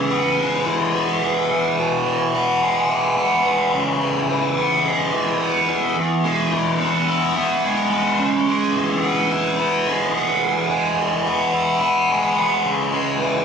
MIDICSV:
0, 0, Header, 1, 2, 480
1, 0, Start_track
1, 0, Key_signature, 4, "major"
1, 0, Tempo, 557103
1, 1299, Time_signature, 4, 2, 24, 8
1, 11588, End_track
2, 0, Start_track
2, 0, Title_t, "Overdriven electric guitar"
2, 0, Program_c, 0, 29
2, 0, Note_on_c, 0, 49, 71
2, 0, Note_on_c, 0, 52, 67
2, 0, Note_on_c, 0, 56, 71
2, 90, Note_on_c, 0, 59, 67
2, 329, Note_off_c, 0, 56, 0
2, 332, Note_on_c, 0, 56, 74
2, 569, Note_off_c, 0, 52, 0
2, 572, Note_on_c, 0, 52, 65
2, 579, Note_off_c, 0, 49, 0
2, 811, Note_off_c, 0, 59, 0
2, 814, Note_on_c, 0, 59, 69
2, 1056, Note_off_c, 0, 52, 0
2, 1059, Note_on_c, 0, 52, 53
2, 1298, Note_on_c, 0, 40, 68
2, 1536, Note_on_c, 0, 47, 70
2, 1774, Note_off_c, 0, 52, 0
2, 1777, Note_on_c, 0, 52, 65
2, 2016, Note_off_c, 0, 59, 0
2, 2020, Note_on_c, 0, 59, 69
2, 2255, Note_off_c, 0, 56, 0
2, 2259, Note_on_c, 0, 56, 75
2, 2495, Note_off_c, 0, 52, 0
2, 2499, Note_on_c, 0, 52, 72
2, 2500, Note_off_c, 0, 40, 0
2, 2734, Note_off_c, 0, 59, 0
2, 2737, Note_on_c, 0, 59, 66
2, 2739, Note_off_c, 0, 47, 0
2, 2973, Note_off_c, 0, 52, 0
2, 2977, Note_on_c, 0, 52, 58
2, 3223, Note_on_c, 0, 49, 69
2, 3249, Note_off_c, 0, 59, 0
2, 3452, Note_off_c, 0, 52, 0
2, 3455, Note_on_c, 0, 52, 68
2, 3690, Note_off_c, 0, 52, 0
2, 3700, Note_on_c, 0, 52, 72
2, 3938, Note_on_c, 0, 59, 64
2, 4176, Note_off_c, 0, 56, 0
2, 4180, Note_on_c, 0, 56, 71
2, 4405, Note_off_c, 0, 52, 0
2, 4415, Note_on_c, 0, 52, 68
2, 4422, Note_off_c, 0, 49, 0
2, 4647, Note_off_c, 0, 59, 0
2, 4657, Note_on_c, 0, 59, 71
2, 4889, Note_off_c, 0, 52, 0
2, 4899, Note_on_c, 0, 52, 59
2, 5138, Note_on_c, 0, 40, 67
2, 5139, Note_off_c, 0, 59, 0
2, 5140, Note_off_c, 0, 52, 0
2, 5140, Note_off_c, 0, 56, 0
2, 5383, Note_on_c, 0, 56, 75
2, 5619, Note_on_c, 0, 52, 70
2, 5860, Note_on_c, 0, 59, 69
2, 6101, Note_on_c, 0, 64, 73
2, 6339, Note_off_c, 0, 40, 0
2, 6344, Note_off_c, 0, 59, 0
2, 6347, Note_on_c, 0, 59, 73
2, 6581, Note_off_c, 0, 56, 0
2, 6584, Note_on_c, 0, 56, 72
2, 6814, Note_off_c, 0, 59, 0
2, 6817, Note_on_c, 0, 59, 60
2, 7062, Note_on_c, 0, 49, 71
2, 7088, Note_off_c, 0, 59, 0
2, 7309, Note_off_c, 0, 56, 0
2, 7312, Note_on_c, 0, 56, 71
2, 7542, Note_off_c, 0, 52, 0
2, 7546, Note_on_c, 0, 52, 70
2, 7784, Note_on_c, 0, 59, 67
2, 8018, Note_off_c, 0, 64, 0
2, 8021, Note_on_c, 0, 64, 77
2, 8260, Note_off_c, 0, 49, 0
2, 8265, Note_off_c, 0, 59, 0
2, 8268, Note_on_c, 0, 59, 66
2, 8500, Note_off_c, 0, 56, 0
2, 8504, Note_on_c, 0, 56, 75
2, 8739, Note_off_c, 0, 59, 0
2, 8743, Note_on_c, 0, 59, 57
2, 8984, Note_on_c, 0, 40, 68
2, 9219, Note_off_c, 0, 56, 0
2, 9222, Note_on_c, 0, 56, 75
2, 9460, Note_off_c, 0, 52, 0
2, 9464, Note_on_c, 0, 52, 71
2, 9691, Note_off_c, 0, 59, 0
2, 9695, Note_on_c, 0, 59, 75
2, 9934, Note_off_c, 0, 64, 0
2, 9937, Note_on_c, 0, 64, 83
2, 10171, Note_off_c, 0, 59, 0
2, 10174, Note_on_c, 0, 59, 72
2, 10180, Note_off_c, 0, 40, 0
2, 10410, Note_off_c, 0, 56, 0
2, 10413, Note_on_c, 0, 56, 69
2, 10650, Note_off_c, 0, 59, 0
2, 10654, Note_on_c, 0, 59, 67
2, 10900, Note_on_c, 0, 49, 72
2, 10926, Note_off_c, 0, 59, 0
2, 11138, Note_off_c, 0, 56, 0
2, 11141, Note_on_c, 0, 56, 68
2, 11375, Note_off_c, 0, 52, 0
2, 11379, Note_on_c, 0, 52, 72
2, 11588, Note_off_c, 0, 49, 0
2, 11588, Note_off_c, 0, 52, 0
2, 11588, Note_off_c, 0, 56, 0
2, 11588, Note_off_c, 0, 64, 0
2, 11588, End_track
0, 0, End_of_file